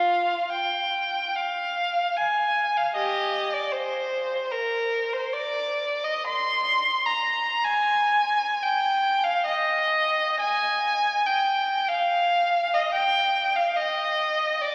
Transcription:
0, 0, Header, 1, 2, 480
1, 0, Start_track
1, 0, Tempo, 818554
1, 1276, Tempo, 781250
1, 1756, Time_signature, 4, 2, 24, 8
1, 2716, Tempo, 818554
1, 3196, Tempo, 918836
1, 3676, Tempo, 788436
1, 5116, Tempo, 829876
1, 5596, Tempo, 950872
1, 6076, Tempo, 858369
1, 6556, Tempo, 841515
1, 8545, End_track
2, 0, Start_track
2, 0, Title_t, "Violin"
2, 0, Program_c, 0, 40
2, 0, Note_on_c, 0, 65, 56
2, 0, Note_on_c, 0, 77, 67
2, 281, Note_off_c, 0, 77, 0
2, 284, Note_off_c, 0, 65, 0
2, 307, Note_on_c, 0, 79, 67
2, 791, Note_on_c, 0, 77, 68
2, 795, Note_off_c, 0, 79, 0
2, 1271, Note_on_c, 0, 80, 67
2, 1274, Note_off_c, 0, 77, 0
2, 1636, Note_off_c, 0, 80, 0
2, 1640, Note_on_c, 0, 77, 60
2, 1750, Note_on_c, 0, 67, 58
2, 1752, Note_on_c, 0, 75, 69
2, 1757, Note_off_c, 0, 77, 0
2, 2079, Note_off_c, 0, 67, 0
2, 2097, Note_off_c, 0, 75, 0
2, 2110, Note_on_c, 0, 74, 63
2, 2222, Note_on_c, 0, 72, 70
2, 2227, Note_off_c, 0, 74, 0
2, 2714, Note_on_c, 0, 70, 74
2, 2715, Note_off_c, 0, 72, 0
2, 3072, Note_off_c, 0, 70, 0
2, 3072, Note_on_c, 0, 72, 65
2, 3189, Note_on_c, 0, 74, 70
2, 3196, Note_off_c, 0, 72, 0
2, 3558, Note_off_c, 0, 74, 0
2, 3561, Note_on_c, 0, 75, 67
2, 3677, Note_off_c, 0, 75, 0
2, 3680, Note_on_c, 0, 84, 96
2, 4151, Note_off_c, 0, 84, 0
2, 4161, Note_on_c, 0, 82, 74
2, 4514, Note_off_c, 0, 82, 0
2, 4514, Note_on_c, 0, 80, 81
2, 5118, Note_off_c, 0, 80, 0
2, 5118, Note_on_c, 0, 79, 74
2, 5471, Note_on_c, 0, 77, 70
2, 5474, Note_off_c, 0, 79, 0
2, 5596, Note_off_c, 0, 77, 0
2, 5597, Note_on_c, 0, 75, 84
2, 6067, Note_off_c, 0, 75, 0
2, 6070, Note_on_c, 0, 80, 92
2, 6544, Note_off_c, 0, 80, 0
2, 6555, Note_on_c, 0, 79, 76
2, 6910, Note_on_c, 0, 77, 80
2, 6914, Note_off_c, 0, 79, 0
2, 7397, Note_on_c, 0, 75, 70
2, 7398, Note_off_c, 0, 77, 0
2, 7509, Note_on_c, 0, 79, 82
2, 7520, Note_off_c, 0, 75, 0
2, 7864, Note_off_c, 0, 79, 0
2, 7867, Note_on_c, 0, 77, 68
2, 7983, Note_on_c, 0, 75, 75
2, 7991, Note_off_c, 0, 77, 0
2, 8466, Note_on_c, 0, 74, 73
2, 8469, Note_off_c, 0, 75, 0
2, 8545, Note_off_c, 0, 74, 0
2, 8545, End_track
0, 0, End_of_file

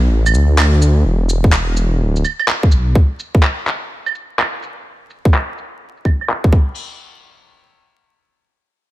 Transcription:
0, 0, Header, 1, 3, 480
1, 0, Start_track
1, 0, Tempo, 476190
1, 1059, Time_signature, 4, 2, 24, 8
1, 8981, End_track
2, 0, Start_track
2, 0, Title_t, "Detuned saw bass"
2, 0, Program_c, 0, 39
2, 96, Note_on_c, 0, 33, 81
2, 333, Note_on_c, 0, 38, 93
2, 348, Note_off_c, 0, 33, 0
2, 1045, Note_off_c, 0, 38, 0
2, 1059, Note_on_c, 0, 28, 88
2, 1435, Note_off_c, 0, 28, 0
2, 1456, Note_on_c, 0, 28, 87
2, 2021, Note_on_c, 0, 26, 79
2, 2036, Note_off_c, 0, 28, 0
2, 2247, Note_off_c, 0, 26, 0
2, 2743, Note_on_c, 0, 35, 93
2, 2968, Note_off_c, 0, 35, 0
2, 8981, End_track
3, 0, Start_track
3, 0, Title_t, "Drums"
3, 264, Note_on_c, 9, 75, 53
3, 264, Note_on_c, 9, 82, 32
3, 346, Note_off_c, 9, 82, 0
3, 346, Note_on_c, 9, 82, 56
3, 364, Note_off_c, 9, 75, 0
3, 446, Note_off_c, 9, 82, 0
3, 586, Note_on_c, 9, 39, 103
3, 586, Note_on_c, 9, 75, 53
3, 687, Note_off_c, 9, 39, 0
3, 687, Note_off_c, 9, 75, 0
3, 825, Note_on_c, 9, 82, 56
3, 925, Note_off_c, 9, 82, 0
3, 1303, Note_on_c, 9, 82, 55
3, 1404, Note_off_c, 9, 82, 0
3, 1453, Note_on_c, 9, 36, 106
3, 1537, Note_on_c, 9, 39, 103
3, 1554, Note_off_c, 9, 36, 0
3, 1637, Note_off_c, 9, 39, 0
3, 1780, Note_on_c, 9, 82, 55
3, 1880, Note_off_c, 9, 82, 0
3, 2178, Note_on_c, 9, 82, 30
3, 2263, Note_off_c, 9, 82, 0
3, 2263, Note_on_c, 9, 75, 35
3, 2263, Note_on_c, 9, 82, 55
3, 2363, Note_off_c, 9, 75, 0
3, 2363, Note_off_c, 9, 82, 0
3, 2413, Note_on_c, 9, 75, 47
3, 2499, Note_on_c, 9, 39, 101
3, 2514, Note_off_c, 9, 75, 0
3, 2600, Note_off_c, 9, 39, 0
3, 2654, Note_on_c, 9, 36, 100
3, 2737, Note_on_c, 9, 82, 53
3, 2754, Note_off_c, 9, 36, 0
3, 2838, Note_off_c, 9, 82, 0
3, 2978, Note_on_c, 9, 36, 115
3, 3079, Note_off_c, 9, 36, 0
3, 3221, Note_on_c, 9, 82, 51
3, 3321, Note_off_c, 9, 82, 0
3, 3373, Note_on_c, 9, 36, 105
3, 3456, Note_on_c, 9, 39, 104
3, 3474, Note_off_c, 9, 36, 0
3, 3557, Note_off_c, 9, 39, 0
3, 3701, Note_on_c, 9, 39, 59
3, 3701, Note_on_c, 9, 82, 53
3, 3802, Note_off_c, 9, 39, 0
3, 3802, Note_off_c, 9, 82, 0
3, 4096, Note_on_c, 9, 75, 47
3, 4096, Note_on_c, 9, 82, 29
3, 4181, Note_off_c, 9, 82, 0
3, 4181, Note_on_c, 9, 82, 53
3, 4196, Note_off_c, 9, 75, 0
3, 4282, Note_off_c, 9, 82, 0
3, 4425, Note_on_c, 9, 39, 101
3, 4425, Note_on_c, 9, 75, 45
3, 4526, Note_off_c, 9, 39, 0
3, 4526, Note_off_c, 9, 75, 0
3, 4665, Note_on_c, 9, 82, 50
3, 4765, Note_off_c, 9, 82, 0
3, 5143, Note_on_c, 9, 82, 49
3, 5244, Note_off_c, 9, 82, 0
3, 5295, Note_on_c, 9, 36, 104
3, 5383, Note_on_c, 9, 39, 102
3, 5396, Note_off_c, 9, 36, 0
3, 5484, Note_off_c, 9, 39, 0
3, 5624, Note_on_c, 9, 82, 49
3, 5725, Note_off_c, 9, 82, 0
3, 6019, Note_on_c, 9, 82, 28
3, 6100, Note_on_c, 9, 36, 56
3, 6104, Note_off_c, 9, 82, 0
3, 6104, Note_on_c, 9, 75, 30
3, 6104, Note_on_c, 9, 82, 50
3, 6200, Note_off_c, 9, 36, 0
3, 6205, Note_off_c, 9, 75, 0
3, 6205, Note_off_c, 9, 82, 0
3, 6261, Note_on_c, 9, 75, 43
3, 6343, Note_on_c, 9, 39, 95
3, 6362, Note_off_c, 9, 75, 0
3, 6443, Note_off_c, 9, 39, 0
3, 6494, Note_on_c, 9, 36, 92
3, 6578, Note_off_c, 9, 36, 0
3, 6578, Note_on_c, 9, 36, 100
3, 6581, Note_on_c, 9, 49, 77
3, 6679, Note_off_c, 9, 36, 0
3, 6681, Note_off_c, 9, 49, 0
3, 8981, End_track
0, 0, End_of_file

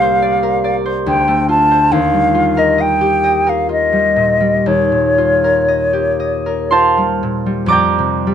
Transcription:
0, 0, Header, 1, 3, 480
1, 0, Start_track
1, 0, Tempo, 858369
1, 1078, Time_signature, 3, 2, 24, 8
1, 1560, Tempo, 909091
1, 2040, Tempo, 970874
1, 2520, Tempo, 1027397
1, 3480, Tempo, 964630
1, 3960, Tempo, 867052
1, 4323, End_track
2, 0, Start_track
2, 0, Title_t, "Flute"
2, 0, Program_c, 0, 73
2, 0, Note_on_c, 0, 77, 87
2, 429, Note_off_c, 0, 77, 0
2, 603, Note_on_c, 0, 79, 70
2, 825, Note_off_c, 0, 79, 0
2, 838, Note_on_c, 0, 81, 74
2, 1074, Note_on_c, 0, 77, 74
2, 1083, Note_off_c, 0, 81, 0
2, 1447, Note_on_c, 0, 75, 64
2, 1455, Note_off_c, 0, 77, 0
2, 1570, Note_on_c, 0, 79, 72
2, 1578, Note_off_c, 0, 75, 0
2, 1931, Note_on_c, 0, 77, 61
2, 1939, Note_off_c, 0, 79, 0
2, 2046, Note_off_c, 0, 77, 0
2, 2051, Note_on_c, 0, 75, 67
2, 2521, Note_on_c, 0, 73, 61
2, 2528, Note_off_c, 0, 75, 0
2, 3482, Note_off_c, 0, 73, 0
2, 4323, End_track
3, 0, Start_track
3, 0, Title_t, "Harp"
3, 0, Program_c, 1, 46
3, 0, Note_on_c, 1, 36, 55
3, 0, Note_on_c, 1, 58, 41
3, 0, Note_on_c, 1, 67, 47
3, 9, Note_on_c, 1, 72, 46
3, 124, Note_on_c, 1, 74, 47
3, 240, Note_on_c, 1, 70, 46
3, 352, Note_off_c, 1, 74, 0
3, 359, Note_on_c, 1, 74, 49
3, 472, Note_off_c, 1, 72, 0
3, 478, Note_on_c, 1, 72, 46
3, 595, Note_on_c, 1, 38, 55
3, 620, Note_off_c, 1, 70, 0
3, 622, Note_off_c, 1, 36, 0
3, 622, Note_off_c, 1, 58, 0
3, 622, Note_off_c, 1, 67, 0
3, 714, Note_on_c, 1, 57, 42
3, 832, Note_on_c, 1, 65, 43
3, 950, Note_off_c, 1, 72, 0
3, 956, Note_on_c, 1, 72, 43
3, 1072, Note_on_c, 1, 39, 54
3, 1093, Note_off_c, 1, 38, 0
3, 1093, Note_off_c, 1, 57, 0
3, 1095, Note_off_c, 1, 72, 0
3, 1095, Note_off_c, 1, 74, 0
3, 1194, Note_on_c, 1, 55, 37
3, 1304, Note_off_c, 1, 65, 0
3, 1311, Note_on_c, 1, 65, 42
3, 1437, Note_on_c, 1, 70, 41
3, 1555, Note_on_c, 1, 75, 41
3, 1676, Note_on_c, 1, 67, 43
3, 1790, Note_off_c, 1, 75, 0
3, 1796, Note_on_c, 1, 75, 43
3, 1910, Note_off_c, 1, 70, 0
3, 1917, Note_on_c, 1, 70, 43
3, 2029, Note_off_c, 1, 65, 0
3, 2035, Note_on_c, 1, 65, 41
3, 2146, Note_off_c, 1, 55, 0
3, 2152, Note_on_c, 1, 55, 34
3, 2269, Note_on_c, 1, 46, 39
3, 2383, Note_off_c, 1, 55, 0
3, 2389, Note_on_c, 1, 55, 35
3, 2509, Note_off_c, 1, 39, 0
3, 2515, Note_on_c, 1, 39, 48
3, 2631, Note_off_c, 1, 46, 0
3, 2636, Note_on_c, 1, 46, 32
3, 2753, Note_off_c, 1, 65, 0
3, 2758, Note_on_c, 1, 65, 38
3, 2875, Note_off_c, 1, 70, 0
3, 2880, Note_on_c, 1, 70, 38
3, 2987, Note_off_c, 1, 75, 0
3, 2993, Note_on_c, 1, 75, 36
3, 3104, Note_off_c, 1, 67, 0
3, 3109, Note_on_c, 1, 67, 39
3, 3228, Note_off_c, 1, 75, 0
3, 3233, Note_on_c, 1, 75, 39
3, 3351, Note_off_c, 1, 70, 0
3, 3356, Note_on_c, 1, 70, 40
3, 3471, Note_off_c, 1, 65, 0
3, 3472, Note_on_c, 1, 84, 59
3, 3475, Note_on_c, 1, 65, 37
3, 3477, Note_on_c, 1, 72, 44
3, 3477, Note_on_c, 1, 81, 49
3, 3478, Note_on_c, 1, 77, 46
3, 3598, Note_off_c, 1, 55, 0
3, 3604, Note_on_c, 1, 55, 34
3, 3724, Note_off_c, 1, 46, 0
3, 3730, Note_on_c, 1, 46, 38
3, 3841, Note_off_c, 1, 55, 0
3, 3847, Note_on_c, 1, 55, 36
3, 3947, Note_on_c, 1, 41, 55
3, 3957, Note_on_c, 1, 86, 79
3, 3963, Note_on_c, 1, 74, 60
3, 3965, Note_on_c, 1, 82, 57
3, 3978, Note_off_c, 1, 39, 0
3, 3978, Note_off_c, 1, 70, 0
3, 3978, Note_off_c, 1, 75, 0
3, 3978, Note_on_c, 1, 79, 56
3, 3981, Note_off_c, 1, 46, 0
3, 4124, Note_on_c, 1, 48, 39
3, 4274, Note_off_c, 1, 55, 0
3, 4281, Note_on_c, 1, 55, 44
3, 4323, Note_off_c, 1, 41, 0
3, 4323, Note_off_c, 1, 48, 0
3, 4323, Note_off_c, 1, 55, 0
3, 4323, Note_off_c, 1, 65, 0
3, 4323, Note_off_c, 1, 67, 0
3, 4323, Note_off_c, 1, 72, 0
3, 4323, Note_off_c, 1, 74, 0
3, 4323, Note_off_c, 1, 77, 0
3, 4323, Note_off_c, 1, 79, 0
3, 4323, Note_off_c, 1, 81, 0
3, 4323, Note_off_c, 1, 82, 0
3, 4323, Note_off_c, 1, 84, 0
3, 4323, Note_off_c, 1, 86, 0
3, 4323, End_track
0, 0, End_of_file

